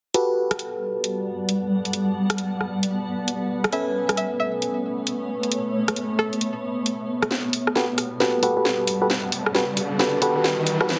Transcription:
0.14 3.69 G3 medium
0.14 10.99 B3 medium
0.14 3.71 F#4 medium
0.14 3.71 G4 medium
0.14 3.71 A4 medium
0.14 3.71 B4 medium
0.14 7.27 B4 medium
0.14 3.69 D5 medium
0.14 3.69 F#5 medium
0.14 1.92 A5 medium
0.14 closed hi-hat medium
0.22 3.73 G3 medium
0.51 cross-stick medium
0.51 closed hi-hat medium
0.58 4.81 F#5 medium
0.58 closed hi-hat medium
1.04 closed hi-hat medium
1.16 3.73 A5 medium
1.49 closed hi-hat medium
1.85 closed hi-hat soft
1.93 3.71 B5 medium
1.93 closed hi-hat medium
2.30 cross-stick medium
2.30 closed hi-hat medium
2.38 closed hi-hat medium
2.61 cross-stick soft
2.83 closed hi-hat medium
3.28 closed hi-hat medium
3.64 cross-stick medium
3.64 closed hi-hat soft
3.72 7.27 A3 medium
3.72 7.29 C#4 medium
3.72 7.29 A4 medium
3.72 7.29 B4 medium
3.72 7.27 C#5 medium
3.72 7.27 E5 medium
3.72 3.95 E5 loud
3.72 7.29 G#5 medium
3.72 5.50 G#5 medium
3.72 closed hi-hat medium
3.97 8.60 A3 medium
4.09 cross-stick soft
4.09 closed hi-hat medium
4.17 4.32 E5 medium
4.17 closed hi-hat medium
4.37 7.31 C#5 medium
4.37 4.54 E5 medium
4.62 closed hi-hat medium
5.07 closed hi-hat medium
5.43 closed hi-hat soft
5.52 closed hi-hat medium
5.88 cross-stick medium
5.88 closed hi-hat medium
5.96 closed hi-hat medium
6.19 7.24 A4 medium
6.19 cross-stick soft
6.33 closed hi-hat soft
6.41 closed hi-hat medium
6.86 closed hi-hat medium
7.22 cross-stick medium
7.22 closed hi-hat soft
7.31 10.85 G3 medium
7.31 10.99 B4 medium
7.31 10.85 D5 medium
7.31 10.85 F#5 medium
7.31 10.85 A5 medium
7.31 snare soft
7.31 riser medium
7.45 10.99 F#5 medium
7.53 open hi-hat loud
7.67 10.89 G3 medium
7.67 cross-stick medium
7.75 7.85 F#4 medium
7.75 7.85 G4 medium
7.75 7.85 A4 medium
7.75 7.85 B4 medium
7.75 snare soft
7.98 cross-stick soft
7.98 open hi-hat loud
8.20 8.41 F#4 medium
8.20 8.41 G4 medium
8.20 8.41 A4 medium
8.20 8.41 B4 medium
8.20 snare soft
8.43 8.55 F#4 medium
8.43 8.55 G4 medium
8.43 8.55 A4 medium
8.43 8.55 B4 loud
8.43 open hi-hat loud
8.55 8.98 F#4 medium
8.55 8.98 G4 medium
8.55 8.98 A4 medium
8.55 8.98 B4 medium
8.55 10.89 A5 medium
8.65 snare soft
8.87 open hi-hat loud
9.02 9.07 F#4 medium
9.02 9.07 G4 medium
9.02 9.07 A4 medium
9.02 9.07 B4 loud
9.10 snare medium
9.32 open hi-hat loud
9.46 cross-stick medium
9.55 9.65 F#4 medium
9.55 9.65 G4 medium
9.55 9.65 A4 medium
9.55 9.65 B4 loud
9.55 snare medium
9.77 open hi-hat loud
9.99 10.20 F#4 medium
9.99 10.20 G4 medium
9.99 10.20 A4 medium
9.99 10.20 B4 medium
9.99 snare medium
10.22 10.34 F#4 medium
10.22 10.34 G4 medium
10.22 10.34 A4 medium
10.22 10.34 B4 loud
10.22 open hi-hat loud
10.36 10.77 F#4 medium
10.36 10.77 G4 medium
10.36 10.77 A4 medium
10.36 10.77 B4 medium
10.44 snare medium
10.67 open hi-hat loud
10.81 10.87 F#4 medium
10.81 10.87 G4 medium
10.81 10.87 A4 medium
10.81 10.87 B4 loud
10.81 cross-stick medium
10.89 snare medium

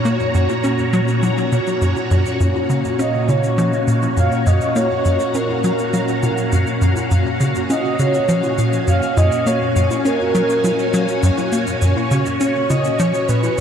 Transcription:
0.00 13.60 A#2 medium
0.00 13.60 C#4 medium
0.00 2.42 D#4 medium
0.00 2.44 F#4 medium
0.00 13.60 F#4 medium
0.00 13.60 C#5 medium
0.00 3.50 A#5 medium
0.05 0.19 A#3 medium
0.05 shaker medium
0.20 shaker soft
0.34 0.48 F#2 medium
0.34 shaker medium
0.49 high conga soft
0.49 shaker soft
0.64 0.78 C#4 medium
0.64 shaker medium
0.79 shaker soft
0.93 1.02 F#3 loud
0.93 shaker medium
1.08 shaker soft
1.23 1.31 F#3 medium
1.23 high conga soft
1.23 shaker medium
1.38 shaker soft
1.52 1.60 B2 medium
1.52 shaker medium
1.67 shaker soft
1.82 1.95 F#2 medium
1.82 shaker medium
1.97 high conga soft
1.97 shaker soft
2.11 2.25 F#2 loud
2.11 shaker medium
2.26 shaker soft
2.40 2.54 F#2 medium
2.40 11.85 F5 medium
2.40 shaker medium
2.55 high conga soft
2.70 2.83 C#3 medium
2.70 shaker medium
2.85 shaker soft
2.99 3.13 C#4 medium
2.99 3.31 D#5 loud
2.99 shaker medium
3.28 3.49 C#3 medium
3.28 3.88 C#5 loud
3.28 high conga soft
3.28 shaker medium
3.44 shaker soft
3.51 8.25 A#5 medium
3.58 3.72 F3 loud
3.58 shaker medium
3.73 shaker soft
3.87 4.08 A#2 medium
3.87 shaker medium
4.03 high conga soft
4.03 shaker soft
4.17 4.31 F#2 medium
4.17 4.48 F5 loud
4.17 shaker medium
4.32 shaker soft
4.46 4.60 F#2 loud
4.46 4.78 D#5 loud
4.46 shaker medium
4.61 shaker soft
4.76 4.89 A#3 medium
4.76 5.37 C#5 loud
4.76 high conga soft
4.76 shaker medium
5.05 5.19 F#2 medium
5.05 shaker medium
5.20 shaker soft
5.34 5.48 C#4 medium
5.34 6.82 A#4 medium
5.34 shaker medium
5.49 high conga soft
5.64 5.72 F#3 loud
5.64 shaker medium
5.79 shaker medium
5.93 6.02 F#3 medium
5.93 shaker medium
6.08 shaker soft
6.23 6.31 B2 medium
6.23 high conga soft
6.23 shaker medium
6.38 shaker medium
6.52 6.66 F#2 medium
6.52 shaker medium
6.67 shaker soft
6.82 6.95 F#2 loud
6.82 shaker medium
6.96 high conga soft
6.96 shaker medium
7.11 7.25 F#2 medium
7.11 shaker medium
7.40 7.54 C#3 medium
7.40 shaker medium
7.55 shaker medium
7.70 7.83 C#4 medium
7.70 8.01 D#5 loud
7.70 high conga soft
7.70 shaker medium
7.99 8.20 C#3 medium
7.99 8.58 C#5 loud
7.99 shaker medium
8.14 shaker medium
8.22 12.95 G#5 medium
8.29 8.42 F3 loud
8.29 shaker medium
8.43 high conga soft
8.43 shaker soft
8.58 8.79 A#2 medium
8.58 shaker medium
8.73 shaker soft
8.87 9.01 F#2 medium
8.87 9.19 F5 loud
8.87 shaker medium
9.03 shaker soft
9.17 9.31 F#2 loud
9.17 9.48 D#5 loud
9.17 high conga soft
9.17 shaker medium
9.32 shaker medium
9.46 9.60 A#3 medium
9.46 10.07 C#5 loud
9.46 shaker medium
9.76 9.89 F#2 medium
9.76 shaker medium
9.91 high conga soft
9.91 shaker soft
10.05 10.19 C#4 medium
10.05 11.53 A#4 medium
10.05 shaker medium
10.35 10.43 F#3 loud
10.35 shaker medium
10.50 shaker medium
10.64 10.72 F#3 medium
10.64 high conga soft
10.64 shaker medium
10.79 shaker soft
10.94 11.07 F#3 medium
10.94 shaker medium
11.08 shaker medium
11.23 11.31 F#2 loud
11.23 shaker medium
11.38 high conga soft
11.38 shaker soft
11.52 11.66 A#3 medium
11.52 shaker medium
11.67 shaker medium
11.82 11.95 F#2 medium
11.82 13.60 C#5 medium
11.82 shaker medium
11.97 high conga soft
12.11 12.25 C#3 medium
12.11 shaker medium
12.26 shaker soft
12.40 12.54 C#4 medium
12.40 12.71 C#5 loud
12.40 shaker medium
12.70 12.90 C#3 medium
12.70 13.00 D#5 loud
12.70 high conga soft
12.70 shaker medium
12.85 shaker soft
12.92 13.60 F#5 medium
12.99 13.13 F3 loud
12.99 13.30 C#5 loud
12.99 shaker medium
13.14 shaker soft
13.28 13.49 A#2 medium
13.28 13.60 B4 loud
13.28 shaker medium
13.43 high conga soft
13.43 shaker soft

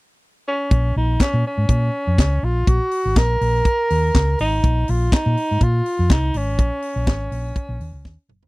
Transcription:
0.48 0.93 C#4 medium
0.71 0.91 A#1 medium
0.71 kick loud
0.71 closed hi-hat medium
0.96 1.15 A#1 loud
0.96 1.19 D#4 medium
1.20 1.44 C#4 medium
1.20 kick medium
1.20 snare medium
1.20 clap medium
1.20 closed hi-hat medium
1.34 1.43 A#2 medium
1.47 2.46 C#4 medium
1.58 1.67 G#2 medium
1.69 1.89 A#2 medium
1.69 kick loud
1.69 closed hi-hat medium
2.07 2.16 F2 medium
2.18 2.38 C#2 medium
2.18 kick loud
2.18 snare medium
2.18 clap medium
2.18 closed hi-hat medium
2.43 2.62 A#1 medium
2.43 2.70 F4 medium
2.67 2.78 A#1 loud
2.67 3.19 F#4 loud
2.67 kick loud
2.67 closed hi-hat medium
2.91 open hi-hat medium
3.05 3.14 G#1 medium
3.16 3.36 A#1 medium
3.16 4.39 A#4 loud
3.16 kick loud
3.16 snare loud
3.16 clap medium
3.16 closed hi-hat medium
3.41 3.60 A#1 medium
3.41 open hi-hat medium
3.65 kick medium
3.65 closed hi-hat medium
3.90 4.10 D#2 medium
3.90 open hi-hat medium
4.15 4.34 C#2 medium
4.15 kick loud
4.15 snare medium
4.15 clap medium
4.15 closed hi-hat medium
4.39 4.59 G#1 medium
4.39 4.91 D#4 medium
4.39 open hi-hat medium
4.64 4.83 A#1 medium
4.64 kick medium
4.64 closed hi-hat medium
4.88 5.08 A#1 loud
4.88 5.15 F4 medium
4.88 open hi-hat medium
5.12 5.65 D#4 medium
5.12 kick loud
5.12 snare loud
5.12 clap medium
5.12 closed hi-hat medium
5.26 5.35 A#2 loud
5.37 open hi-hat medium
5.51 5.60 G#2 medium
5.61 5.80 A#2 loud
5.61 6.14 F4 medium
5.61 kick medium
5.61 closed hi-hat medium
5.86 open hi-hat medium
5.99 6.08 F2 medium
6.10 6.29 C2 medium
6.10 6.38 D#4 medium
6.10 kick loud
6.10 snare medium
6.10 clap medium
6.10 closed hi-hat medium
6.34 6.59 G#1 medium
6.34 8.31 C#4 medium
6.34 open hi-hat medium
6.59 6.69 A#1 loud
6.59 kick loud
6.59 closed hi-hat medium
6.82 open hi-hat medium
6.96 7.05 A#1 medium
7.07 7.27 G#1 medium
7.07 kick loud
7.07 snare loud
7.07 clap medium
7.07 closed hi-hat medium
7.31 7.51 A#1 medium
7.31 open hi-hat medium
7.56 kick loud
7.56 closed hi-hat medium
7.69 7.78 A#1 medium
7.80 7.91 D#2 medium
7.80 open hi-hat medium
7.93 8.02 C#2 medium
8.05 8.15 D#2 medium
8.05 kick loud
8.05 snare soft
8.28 8.42 F#1 medium
8.28 mid tom medium
8.42 8.48 G#1 medium
8.42 floor tom medium

